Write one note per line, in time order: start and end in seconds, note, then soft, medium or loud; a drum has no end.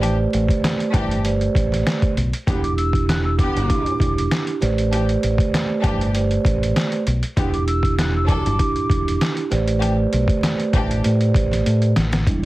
0.00 0.25 A1 loud
0.00 0.16 E3 medium
0.00 1.16 A3 loud
0.00 0.16 D4 medium
0.00 0.16 G4 loud
0.00 1.16 G4 medium
0.00 1.16 B4 medium
0.00 1.17 C5 medium
0.00 closed hi-hat medium
0.04 1.17 D5 loud
0.33 0.48 A1 loud
0.33 closed hi-hat medium
0.48 kick medium
0.48 closed hi-hat medium
0.64 snare loud
0.64 clap medium
0.64 closed hi-hat loud
0.80 closed hi-hat soft
0.94 1.47 G1 medium
0.94 1.20 E3 loud
0.94 1.20 D4 medium
0.94 1.20 G4 loud
0.94 kick loud
0.94 closed hi-hat medium
1.11 closed hi-hat medium
1.23 2.09 A3 loud
1.23 2.09 G4 medium
1.23 2.10 B4 medium
1.23 2.10 C5 medium
1.23 2.10 D5 loud
1.23 closed hi-hat medium
1.41 closed hi-hat soft
1.55 1.82 A1 medium
1.55 kick loud
1.55 closed hi-hat medium
1.72 snare soft
1.72 closed hi-hat medium
1.87 snare loud
1.87 clap medium
1.87 closed hi-hat medium
2.02 kick loud
2.02 closed hi-hat soft
2.17 2.31 B1 loud
2.17 closed hi-hat medium
2.33 closed hi-hat medium
2.47 3.52 E1 loud
2.47 2.62 D3 medium
2.47 2.62 B3 medium
2.47 3.61 D4 loud
2.47 3.61 E4 medium
2.47 2.62 G4 medium
2.47 3.62 G4 loud
2.47 kick loud
2.47 closed hi-hat medium
2.63 2.76 D6 medium
2.63 closed hi-hat soft
2.77 3.05 E6 medium
2.77 closed hi-hat medium
2.93 kick medium
2.93 closed hi-hat medium
3.09 3.24 F#6 medium
3.09 snare loud
3.09 clap medium
3.09 closed hi-hat loud
3.24 3.37 E6 medium
3.39 3.79 D3 loud
3.39 3.79 B3 loud
3.39 3.79 G4 loud
3.39 4.44 D6 medium
3.39 kick loud
3.39 closed hi-hat medium
3.57 3.68 G1 medium
3.57 closed hi-hat medium
3.68 4.54 D4 medium
3.68 4.54 E4 medium
3.68 4.55 G4 loud
3.68 kick loud
3.68 closed hi-hat medium
3.86 closed hi-hat soft
4.00 4.27 E1 loud
4.00 kick loud
4.00 closed hi-hat medium
4.18 closed hi-hat medium
4.31 snare loud
4.31 clap medium
4.31 closed hi-hat medium
4.47 closed hi-hat soft
4.60 5.15 A1 loud
4.60 4.89 A3 medium
4.60 4.89 G4 medium
4.60 4.90 B4 medium
4.60 4.90 C5 medium
4.60 4.90 D5 loud
4.60 snare soft
4.60 closed hi-hat medium
4.78 closed hi-hat medium
4.92 5.07 E3 medium
4.92 6.06 A3 loud
4.92 5.07 D4 medium
4.92 6.06 G4 medium
4.92 5.07 G4 loud
4.92 6.06 B4 medium
4.92 6.06 C5 medium
4.92 6.07 D5 loud
4.92 closed hi-hat medium
5.09 closed hi-hat soft
5.23 5.38 A1 loud
5.23 closed hi-hat medium
5.38 kick medium
5.38 closed hi-hat medium
5.54 snare loud
5.54 clap medium
5.54 closed hi-hat loud
5.84 6.37 G1 medium
5.84 6.10 E3 loud
5.84 6.10 D4 loud
5.84 6.10 G4 loud
5.84 kick loud
5.84 closed hi-hat medium
6.01 closed hi-hat medium
6.13 6.99 A3 loud
6.13 6.99 G4 medium
6.13 6.99 B4 medium
6.13 7.00 C5 medium
6.13 7.00 D5 loud
6.13 closed hi-hat medium
6.31 closed hi-hat soft
6.45 6.72 A1 loud
6.45 kick loud
6.45 closed hi-hat medium
6.63 closed hi-hat medium
6.76 snare loud
6.76 clap medium
6.76 closed hi-hat medium
6.92 closed hi-hat soft
7.07 7.21 B1 loud
7.07 closed hi-hat medium
7.23 closed hi-hat medium
7.36 8.42 E1 loud
7.36 7.51 D3 medium
7.36 7.51 B3 medium
7.36 8.50 D4 loud
7.36 8.51 E4 medium
7.36 7.51 G4 medium
7.36 8.51 G4 loud
7.36 kick loud
7.36 closed hi-hat medium
7.53 7.66 D6 medium
7.53 closed hi-hat soft
7.67 7.95 E6 medium
7.67 closed hi-hat medium
7.83 kick medium
7.83 closed hi-hat medium
7.98 8.13 F#6 medium
7.98 snare loud
7.98 clap medium
7.98 closed hi-hat loud
8.16 8.28 E6 medium
8.28 8.54 F#3 loud
8.28 8.54 D4 loud
8.28 8.54 A4 loud
8.28 9.33 D6 medium
8.28 kick medium
8.28 closed hi-hat medium
8.46 8.58 G1 loud
8.46 closed hi-hat medium
8.57 9.44 D4 medium
8.57 9.44 E4 medium
8.57 9.45 G4 loud
8.57 kick loud
8.57 closed hi-hat medium
8.76 closed hi-hat soft
8.90 9.17 E1 medium
8.90 kick loud
8.90 closed hi-hat medium
9.08 closed hi-hat medium
9.21 snare loud
9.21 clap medium
9.21 closed hi-hat medium
9.37 closed hi-hat soft
9.50 10.05 A1 loud
9.50 9.79 A3 medium
9.50 9.79 G4 medium
9.50 9.79 B4 medium
9.50 9.79 C5 medium
9.50 9.80 D5 loud
9.50 snare soft
9.50 closed hi-hat medium
9.68 closed hi-hat medium
9.81 9.95 E3 medium
9.81 10.95 A3 loud
9.81 9.95 D4 medium
9.81 9.95 G4 loud
9.81 10.96 G4 medium
9.81 10.96 B4 medium
9.81 10.96 C5 medium
9.81 10.96 D5 loud
9.81 closed hi-hat medium
10.13 10.27 B1 medium
10.13 closed hi-hat medium
10.28 kick medium
10.28 closed hi-hat medium
10.43 snare loud
10.43 clap medium
10.43 closed hi-hat loud
10.60 closed hi-hat soft
10.73 11.00 A1 medium
10.73 11.00 E3 loud
10.73 11.00 D4 medium
10.73 11.00 G4 loud
10.73 kick loud
10.73 closed hi-hat medium
10.91 closed hi-hat medium
11.03 11.31 A2 loud
11.03 11.89 A3 loud
11.03 11.89 G4 medium
11.03 11.89 B4 medium
11.03 11.89 C5 medium
11.03 11.90 D5 loud
11.03 closed hi-hat medium
11.21 closed hi-hat soft
11.34 11.61 A1 loud
11.34 kick loud
11.34 closed hi-hat medium
11.51 snare soft
11.51 closed hi-hat medium
11.66 11.93 A2 loud
11.66 closed hi-hat medium
11.82 closed hi-hat soft
11.96 12.23 A1 loud
11.96 snare loud
11.96 closed hi-hat medium
12.13 snare loud
12.13 closed hi-hat medium
12.26 12.45 E1 loud
12.26 12.45 G3 medium
12.26 12.45 D4 medium
12.26 12.45 E4 medium
12.26 kick loud
12.26 closed hi-hat medium